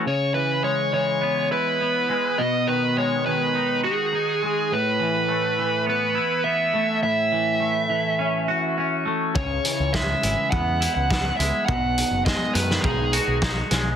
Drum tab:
HH |----------------|----------------|----------------|----------------|
SD |----------------|----------------|----------------|----------------|
BD |----------------|----------------|----------------|----------------|

HH |--x---x---x---x-|--x---x---x---x-|
SD |----o-------o---|----o--o----o-o-|
BD |o---o---o---o---|o---o---o---o---|